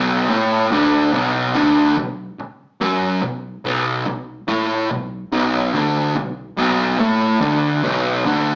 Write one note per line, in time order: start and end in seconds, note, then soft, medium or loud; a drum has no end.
0.00 0.28 B1 loud
0.00 0.29 B2 loud
0.30 0.70 A2 medium
0.30 0.70 A3 loud
0.71 1.12 D2 medium
0.71 1.12 D3 medium
1.13 1.54 B1 medium
1.13 1.54 B2 loud
1.55 1.96 D2 loud
1.55 1.96 D3 loud
1.98 2.31 B1 medium
2.40 muted distorted electric guitar stroke medium
2.81 3.21 F#2 loud
2.81 3.22 F#3 loud
3.23 3.56 B1 medium
3.65 4.05 B1 medium
3.65 4.05 B2 loud
4.07 4.40 B1 medium
4.48 4.89 A2 medium
4.48 4.89 A3 loud
4.91 5.24 B1 medium
5.32 5.73 B1 medium
5.32 5.73 B2 loud
5.74 6.14 D2 medium
5.74 6.15 D3 loud
6.16 6.49 B1 medium
6.57 6.98 B1 loud
6.57 6.99 B2 loud
7.00 7.40 A2 medium
7.00 7.41 A3 loud
7.41 7.82 D2 medium
7.41 7.82 D3 medium
7.83 8.24 B1 medium
7.83 8.24 B2 loud
8.25 8.55 D2 loud
8.25 8.55 D3 loud